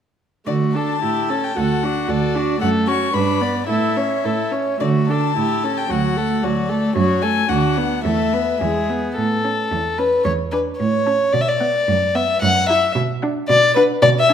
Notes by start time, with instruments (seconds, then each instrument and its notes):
0.46 cello D3, viola A3, violin F#4 D5
0.75 viola D4, violin A4 A5
1.02 cello A2, viola E4, violin G4
1.29 viola C#4, violin A4
1.44 violin G5
1.56 cello D2, viola F#4, violin A4 F#5
1.83 viola D4, violin F#4
2.08 cello D2, viola F#4, violin A4 D5
2.35 viola D4, violin F#4
2.61 cello F#2, viola A3, violin A4 F#5
2.87 viola C#4, violin F#4 C#6
3.14 cello G2, viola D4, violin B4 B5
3.41 viola B3, violin D5
3.67 cello A2, viola E4, violin A4 E5
3.96 viola C#4, violin C#5
4.24 cello A2, viola E4, violin A4
4.51 viola C#4, violin C#5
4.80 cello D3, viola A3, violin F#4 D5
5.09 viola D4, violin A4 A5
5.36 cello A2, viola E4, violin G4
5.64 viola C#4, violin A4
5.77 violin G5
5.90 cello D2, viola F#3, violin F#4 F#5
6.17 viola A3, violin A4
6.43 cello D2, viola F#3, violin F#4 D5
6.69 viola A3, violin A4
6.95 cello F#2, viola F#3, violin F#4 C#5
7.22 viola A3, violin A4 G#5
7.49 cello D2, viola D4, violin F#4 F#5
7.77 viola B3, violin D4
8.05 cello E2, viola A3, violin A4 E5
8.33 viola B3, violin B4
8.61 cello E2, viola G#3, violin G#4
8.89 viola B3
9.16 cello A2, violin A4
9.44 viola C#4, violin A5
9.71 cello E2
9.98 viola C#4, violin B4 A5
10.24 cello E2, violin C#5
10.51 viola D4, violin B4 G#5
10.79 cello A2, violin C#5
11.06 viola C#4, violin A5
11.33 cello B2, violin D5
11.41 violin E5
11.48 violin D5
11.61 viola B3, violin F#5
11.88 cello F#2
12.15 viola B3, violin E5 F#5
12.42 cello F#2, violin F#5
12.68 viola E4, violin E5 A#5
12.96 cello B2
13.22 viola D4, violin F#5
13.49 cello B2, violin D5
13.75 viola D4, violin B4 F#5
14.02 cello B2, violin D5
14.20 violin E5
14.29 viola D4, violin G#5